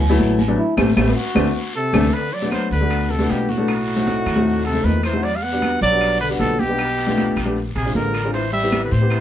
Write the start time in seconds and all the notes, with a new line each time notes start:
Already playing: D2
0.00 high conga, low conga, low agogo
0.09 F#3 A3 B3 E4
0.19 A1, high conga, low timbale, short guiro
0.39 high conga, low agogo, short guiro
0.48 F#3 A3 B3 D4
0.58 E4
0.77 A1 G3 A3 C4, high conga, high timbale, long guiro, claves
0.96 A1 G3 A3 B3 C4, high conga, high timbale, long guiro, claves
1.15 F#4
1.35 D2 A3 C4 D4, high conga, high timbale, claves
1.75 C3 A4
1.93 D2 A3 C4 D4, high conga, high timbale, long guiro, claves
2.13 D3 B4, high conga, high timbale, long guiro
2.32 F#3 D5, high conga
2.42 A3 B3 D4 F#4
2.51 F#3 C5, high conga, high timbale, low timbale, short guiro, claves
2.71 D2 D3 B4, high conga, short guiro
2.81 A3 B3 D4 F#4
2.90 high conga, high timbale, long guiro, claves
3.10 C3 A4, high conga
3.19 A3 B3 D4 F#4
3.29 B1 B2 G4, high conga, high timbale, low timbale, short guiro
3.49 A2 F#4, high conga, short guiro
3.58 A3 B3 D4 A4
3.68 high conga, high timbale, long guiro, claves
3.88 high conga, high timbale
3.96 A3 C4 D#4 F#4
4.07 high conga, high timbale, low timbale, short guiro
4.26 D#2, high conga, high timbale, short guiro, claves
4.36 A3 C4 D#4 F#4
4.46 high conga, long guiro
4.65 C3 A4, high conga, high timbale
4.74 A3 C4 D#4 A4
4.84 E2 D#3 B4, high conga, low timbale, short guiro
5.03 E3 C5, high conga, high timbale, short guiro, claves
5.13 A3 C4 D#4 F#4
5.23 F#3 D5, high conga, high timbale, long guiro
5.36 G3 F5
5.43 B3 F#5, high conga
5.52 G3 B3 D4 F#4
5.62 high conga, high timbale, low timbale, short guiro, claves
5.81 B1 F#3 D5, high conga, short guiro
5.91 G3 B3 D4 F#4
6.01 high conga, high timbale, long guiro, claves
6.20 D3 B4, high conga
6.29 G3 B3 D4 F#4
6.40 B1 D3 A4, high conga, high timbale, low timbale, short guiro
6.59 B2 G4, high conga, short guiro
6.68 G3 B3 D4 G4
6.78 high timbale, long guiro, claves
6.98 high conga, high timbale
7.07 A3 B3 D4 F4
7.17 high conga, high timbale, low timbale, short guiro
7.36 A#1, high conga, high timbale, short guiro, claves
7.45 A3 B3 D4 G4
7.56 high conga, long guiro
7.75 A#1 C3 G#4, high conga, high timbale
7.85 G#3 C4 D4 F4
7.95 A1 D3 A#4, high conga, low timbale, short guiro
8.14 high conga, high timbale, short guiro, claves
8.24 G#3 C4 D4 F4
8.33 E3 C5, high conga, high timbale, long guiro
8.52 G3 E5, high conga
8.62 B3 C4 E4 G4
8.72 high conga, high timbale, low timbale, short guiro, claves
8.85 D3 B4
8.91 A2 E3 C5, high conga, short guiro
9.01 B3 C4 E4 G4
9.10 high conga, high timbale, long guiro, claves